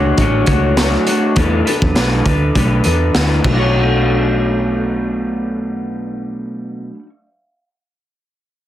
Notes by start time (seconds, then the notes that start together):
Already playing: C#2 A3 D4 F#4 C#5
0.17 A1 A3 D4 F#4 C#5, kick, closed hi-hat
0.46 C#2 D4 F#4 C#5, kick, closed hi-hat
0.51 A3
0.77 D3 F#3 A3 D4 F#4 C#5, snare, closed hi-hat
1.07 A3 D4 F#4 C#5, closed hi-hat
1.36 E2 E3 A3 D4 A4 B4, kick, closed hi-hat
1.65 D4 A4 B4, closed hi-hat
1.82 E2, kick
1.95 B1 E3 A3 D4 A4 B4, snare, closed hi-hat
2.26 D2 D4 A4 B4, kick, closed hi-hat
2.55 B1 A3 D4 A4 B4, kick, closed hi-hat
2.84 E2 A4 B4, closed hi-hat
2.88 D4
3.14 D2 E3 A3 D4 A4 B4, snare, closed hi-hat
3.39 B2
3.44 B1 F#3, kick, crash
3.49 A3 D4
3.56 F#4 C#5